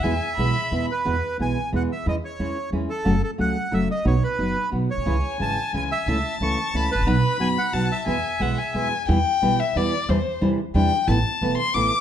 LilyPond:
<<
  \new Staff \with { instrumentName = "Violin" } { \time 3/4 \key e \major \tempo 4 = 180 gis''4 b''4. r8 | r2. | r2. | r2. |
r2. | gis''2. | a''2. | b''2 a''4 |
gis''4 fis''8 gis''8 gis''4 | \key e \minor g''4. e''8 d''4 | c''4 r4 g''4 | a''4. c'''8 d'''4 | }
  \new Staff \with { instrumentName = "Bandoneon" } { \time 3/4 \key e \major e''2~ e''8 b'8~ | b'4 gis''4 fis''8 e''8 | dis''8 cis''4. r8 a'8~ | a'8 a'8 fis''4 e''8 dis''8 |
cis''8 b'4. r8 cis''8~ | cis''4 a''4 gis''8 e''8~ | e''4 cis'''4 b''8 b'8~ | b'4 gis''8 fis''4 e''8~ |
e''2~ e''8 r8 | \key e \minor r2. | r2. | r2. | }
  \new Staff \with { instrumentName = "Nylon-string guitar" } { \clef bass \time 3/4 \key e \major <b, e gis b e'>16 r8. <b, e gis b e'>8 r8 <b, e gis b e'>8 r8 | <b, e gis b e'>16 r8. <b, e gis b e'>8 r8 <b, e gis b e'>8 r8 | <e gis cis' e'>16 r8. <e gis cis' e'>8 r8 <e gis cis' e'>8 r8 | <cis fis a cis' fis'>16 r8. <cis fis a cis' fis'>8 r8 <cis fis a cis' fis'>8 r8 |
<b, fis b dis' fis'>16 r8. <b, fis b dis' fis'>8 r8 <b, fis b dis' fis'>8 r8 | <cis e gis cis' e'>16 r8. <cis e gis cis' e'>8 r8 <cis e gis cis' e'>8 r8 | <cis e a cis' e'>16 r8. <cis e a cis' e'>8 r8 <cis e a cis' e'>8 r8 | <b, fis b dis' fis'>16 r8. <b, fis b dis' fis'>8 r8 <b, fis b dis' fis'>8 r8 |
<b, e gis b e'>16 r8. <b, e gis b e'>8 r8 <b, e gis b e'>8 r8 | \key e \minor <b, e g b e'>16 r8. <b, e g b e'>8 r8 <b, e g b e'>8 r8 | <c e g d' e'>16 r8. <c e g d' e'>8 r8 <c e g d' e'>8 r8 | <e a b e'>16 r8. <e a b e'>8 r8 <e a b e'>8 r8 | }
  \new Staff \with { instrumentName = "Upright bass" } { \clef bass \time 3/4 \key e \major e,16. r8 r32 b,,16. r8 r32 e,16. r8 r32 | e,16. r8 r32 b,,16. r8 r32 e,16. r8 r32 | e,16. r8 r32 e,16. r8 r32 e,16. r8 r32 | fis,,16. r8 r32 cis,16. r8 r32 fis,,16. r8 r32 |
b,,16. r8 r32 fis,,16. r8 r32 b,,16. r16 ais,,32 b,,32 c,32 | cis,16. r8 r32 gis,,16. r8 r32 cis,16. r8 r32 | cis,16. r8 r32 cis,16. r8 r32 cis,16. r16 gis,,32 a,,32 ais,,32 | b,,16. r8 r32 fis,,16. r8 r32 b,,16. r8 r32 |
e,16. r8 r32 b,,16. r8 r32 e,16. r8 r32 | \key e \minor e,16. r8 r32 b,,16. r8 r32 e,16. r8 r32 | e,16. r8 r32 e,16. r8 r32 e,16. r8 r32 | a,,16. r8 r32 e,,16. r8 r32 a,,16. r8 r32 | }
>>